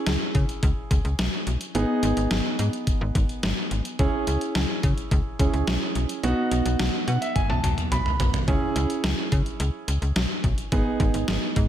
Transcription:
0.00 1.71 C#4 medium
0.00 1.71 E4 medium
0.00 1.71 G#4 medium
0.07 0.17 C#2 loud
0.07 snare loud
0.07 closed hi-hat medium
0.35 0.45 C#3 loud
0.35 kick medium
0.35 closed hi-hat medium
0.49 closed hi-hat soft
0.63 0.73 C#2 loud
0.63 kick medium
0.63 closed hi-hat medium
0.91 1.01 C#2 medium
0.91 kick medium
0.91 closed hi-hat medium
1.05 1.15 C#2 medium
1.05 closed hi-hat soft
1.19 1.29 B1 medium
1.19 snare loud
1.19 closed hi-hat medium
1.47 1.57 B1 medium
1.47 closed hi-hat medium
1.61 closed hi-hat medium
1.75 1.85 G#1 loud
1.75 3.95 B3 medium
1.75 3.95 D#4 medium
1.75 3.95 G#4 medium
1.75 closed hi-hat medium
2.03 2.13 G#1 loud
2.03 closed hi-hat medium
2.17 2.27 G#1 medium
2.17 closed hi-hat medium
2.31 2.41 G#1 loud
2.31 snare loud
2.31 closed hi-hat medium
2.59 2.69 G#2 loud
2.59 closed hi-hat medium
2.73 closed hi-hat soft
2.87 kick medium
2.87 closed hi-hat medium
3.01 3.11 G#1 loud
3.15 3.25 G#1 loud
3.15 kick medium
3.15 closed hi-hat medium
3.29 closed hi-hat soft
3.43 3.53 G#1 loud
3.43 snare loud
3.43 closed hi-hat medium
3.71 3.81 G#1 medium
3.71 closed hi-hat medium
3.85 closed hi-hat medium
3.99 4.09 C#2 loud
3.99 5.37 C#4 medium
3.99 5.37 E4 medium
3.99 5.37 G#4 medium
3.99 kick loud
3.99 closed hi-hat medium
4.27 4.37 C#2 loud
4.27 closed hi-hat medium
4.41 closed hi-hat medium
4.55 4.65 C#2 loud
4.55 snare loud
4.55 closed hi-hat medium
4.83 4.94 C#3 loud
4.83 kick medium
4.83 closed hi-hat medium
4.98 closed hi-hat soft
5.11 5.22 C#2 loud
5.11 kick medium
5.11 closed hi-hat medium
5.39 5.50 C#2 medium
5.39 6.23 C#4 medium
5.39 6.23 E4 medium
5.39 6.23 G#4 medium
5.39 kick medium
5.39 closed hi-hat medium
5.53 5.64 C#2 medium
5.53 closed hi-hat soft
5.67 5.78 B1 loud
5.67 snare loud
5.67 closed hi-hat medium
5.95 6.06 B1 medium
5.95 closed hi-hat medium
6.09 closed hi-hat medium
6.23 6.34 B1 loud
6.23 8.44 B3 medium
6.23 8.44 D#4 medium
6.23 8.44 F#4 medium
6.23 closed hi-hat medium
6.51 6.62 B1 loud
6.51 closed hi-hat medium
6.65 6.76 B1 loud
6.65 closed hi-hat medium
6.79 6.90 B1 loud
6.79 snare loud
6.79 closed hi-hat medium
7.08 7.18 B2 loud
7.08 7.21 F#5 medium
7.08 closed hi-hat medium
7.22 7.35 E5 medium
7.22 closed hi-hat soft
7.36 7.49 G#5 medium
7.36 kick medium
7.36 closed hi-hat medium
7.36 high tom medium
7.50 7.60 B1 loud
7.50 7.89 A5 medium
7.50 high tom soft
7.64 7.74 B1 medium
7.64 closed hi-hat medium
7.64 mid tom medium
7.78 closed hi-hat soft
7.78 mid tom medium
7.92 8.02 B1 loud
7.92 8.44 B5 medium
7.92 closed hi-hat medium
7.92 mid tom medium
8.06 mid tom medium
8.20 8.30 B1 loud
8.20 closed hi-hat medium
8.20 floor tom medium
8.34 closed hi-hat medium
8.34 floor tom medium
8.48 8.58 C#2 loud
8.48 10.68 C#4 medium
8.48 10.68 E4 medium
8.48 10.68 G#4 medium
8.48 kick loud
8.48 closed hi-hat medium
8.76 8.86 C#2 loud
8.76 closed hi-hat medium
8.90 closed hi-hat medium
9.04 9.14 C#2 loud
9.04 snare loud
9.04 closed hi-hat medium
9.32 9.42 C#3 loud
9.32 kick medium
9.32 closed hi-hat medium
9.46 closed hi-hat soft
9.60 9.70 C#2 loud
9.60 closed hi-hat medium
9.88 9.98 C#2 medium
9.88 closed hi-hat medium
10.02 10.12 C#2 medium
10.02 closed hi-hat soft
10.16 10.26 B1 medium
10.16 snare loud
10.16 closed hi-hat medium
10.44 10.54 B1 medium
10.44 kick medium
10.44 closed hi-hat medium
10.58 closed hi-hat medium
10.72 10.82 G#1 loud
10.72 11.68 B3 medium
10.72 11.68 D#4 medium
10.72 11.68 G#4 medium
10.72 kick loud
10.72 closed hi-hat medium
11.00 11.10 G#1 loud
11.00 kick medium
11.00 closed hi-hat medium
11.14 11.24 G#1 medium
11.14 closed hi-hat medium
11.28 11.38 G#1 loud
11.28 snare loud
11.28 closed hi-hat medium
11.56 11.67 G#2 loud
11.56 kick medium
11.56 closed hi-hat medium

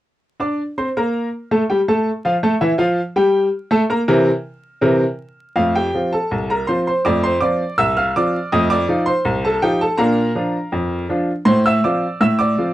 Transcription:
0.40 0.60 D4 medium
0.40 0.61 D5 medium
0.40 0.61 D6 medium
0.78 0.88 C4 medium
0.78 0.88 C5 medium
0.78 0.88 C6 medium
0.97 1.27 A#3 medium
0.97 1.27 A#4 medium
0.97 1.27 A#5 medium
1.51 1.61 A3 medium
1.51 1.62 A4 medium
1.51 1.61 A5 medium
1.70 1.80 G3 medium
1.70 1.80 G4 medium
1.70 1.80 G5 medium
1.88 2.08 A3 medium
1.88 2.09 A4 medium
1.88 2.09 A5 medium
2.25 2.35 F3 medium
2.25 2.35 F4 medium
2.25 2.35 F5 medium
2.43 2.53 A3 medium
2.43 2.53 A4 medium
2.43 2.53 A5 medium
2.61 2.71 E3 medium
2.61 2.71 E4 medium
2.61 2.71 E5 medium
2.78 2.99 F3 medium
2.78 2.99 F4 medium
2.78 2.99 F5 medium
3.16 3.47 G3 medium
3.16 3.47 G4 medium
3.16 3.47 G5 medium
3.71 3.81 A3 medium
3.71 3.82 A4 medium
3.71 3.82 A5 medium
3.90 4.00 A#3 medium
3.90 4.00 A#4 medium
3.90 4.00 A#5 medium
4.08 4.29 C3 loud
4.08 4.29 E3 medium
4.08 4.29 C4 medium
4.08 4.29 A#4 medium
4.81 5.03 C3 medium
4.81 5.03 E3 medium
4.81 5.02 C4 medium
4.81 5.03 A#4 medium
5.56 5.88 F2 medium
5.56 5.78 A3 soft
5.56 5.74 F4 medium
5.56 5.75 F5 medium
5.76 6.10 G4 medium
5.76 6.11 G5 medium
5.94 6.15 F3 soft
5.94 6.15 C4 soft
5.94 6.15 F4 soft
6.13 6.48 A4 medium
6.13 6.48 A5 medium
6.31 6.63 C2 medium
6.50 6.68 A#4 medium
6.50 6.68 A#5 medium
6.67 6.89 F3 medium
6.67 6.89 C4 soft
6.67 6.89 F4 soft
6.67 6.86 C5 medium
6.67 6.86 C6 medium
6.87 7.05 C5 medium
6.87 7.05 C6 medium
7.05 7.37 F2 medium
7.05 7.27 A3 soft
7.05 7.23 D5 medium
7.05 7.23 D6 medium
7.24 7.42 C5 medium
7.24 7.42 C6 medium
7.41 7.62 F3 soft
7.41 7.62 C4 soft
7.41 7.62 F4 soft
7.41 7.76 D5 medium
7.41 7.76 D6 medium
7.78 8.10 C2 medium
7.78 7.96 E5 medium
7.78 7.97 E6 loud
7.97 8.15 F5 medium
7.97 8.16 F6 medium
8.16 8.36 F3 medium
8.16 8.37 C4 soft
8.16 8.37 F4 medium
8.16 8.51 D5 medium
8.16 8.51 D6 medium
8.52 8.84 F2 medium
8.52 8.74 A3 medium
8.52 8.70 D#5 medium
8.52 8.71 D#6 medium
8.70 9.05 D5 medium
8.70 9.00 D6 loud
8.89 9.09 F3 medium
8.89 9.09 D#4 medium
8.89 9.10 F4 medium
9.06 9.42 C5 medium
9.06 9.36 C6 medium
9.25 9.57 C2 medium
9.45 9.62 A4 medium
9.45 9.63 A5 medium
9.62 9.83 F3 medium
9.62 9.83 D#4 medium
9.62 9.83 F4 medium
9.62 9.80 G4 medium
9.62 9.81 G5 medium
9.81 9.99 A4 medium
9.81 10.00 A5 medium
9.97 10.30 A#2 medium
9.97 10.20 D4 medium
9.97 11.06 A#4 medium
9.97 11.06 F5 medium
9.97 11.05 A#5 medium
10.35 10.56 F3 medium
10.35 10.56 D4 soft
10.35 10.57 F4 medium
10.72 11.04 F2 medium
11.09 11.30 F3 medium
11.09 11.30 D4 medium
11.09 11.31 F4 medium
11.45 11.77 A2 medium
11.45 11.64 C5 medium
11.45 11.65 C6 medium
11.66 11.83 E5 medium
11.66 11.84 E6 medium
11.84 12.05 F3 medium
11.84 12.05 C4 soft
11.84 12.05 F4 medium
11.84 12.19 D5 medium
11.84 12.19 D6 medium
12.21 12.52 A2 medium
12.21 12.38 E5 medium
12.21 12.39 E6 medium
12.39 12.73 D5 medium
12.39 12.73 D6 medium
12.58 12.73 F3 soft
12.58 12.73 C4 soft
12.58 12.73 F4 medium

